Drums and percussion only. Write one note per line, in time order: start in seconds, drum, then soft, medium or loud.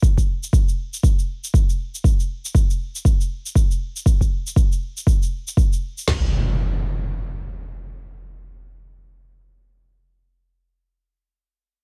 0.03 kick loud
0.03 cabasa medium
0.18 kick medium
0.18 cabasa soft
0.43 cabasa medium
0.53 kick loud
0.53 cabasa medium
0.69 cabasa soft
0.94 cabasa medium
1.03 kick loud
1.03 cabasa medium
1.19 cabasa soft
1.44 cabasa medium
1.54 kick loud
1.54 cabasa medium
1.70 cabasa soft
1.95 cabasa medium
2.04 kick loud
2.04 cabasa medium
2.20 cabasa soft
2.45 cabasa medium
2.55 kick loud
2.55 cabasa medium
2.70 cabasa soft
2.96 cabasa medium
3.05 kick loud
3.05 cabasa medium
3.21 cabasa soft
3.46 cabasa medium
3.55 kick loud
3.55 cabasa medium
3.71 cabasa soft
3.96 cabasa medium
4.06 kick loud
4.06 cabasa medium
4.21 kick medium
4.21 cabasa soft
4.47 cabasa medium
4.56 kick loud
4.56 cabasa medium
4.72 cabasa soft
4.97 cabasa medium
5.07 kick loud
5.07 cabasa medium
5.23 cabasa soft
5.48 cabasa medium
5.57 kick loud
5.57 cabasa medium
5.73 cabasa soft
5.98 cabasa medium
6.08 snare medium
6.08 floor tom medium
6.08 crash medium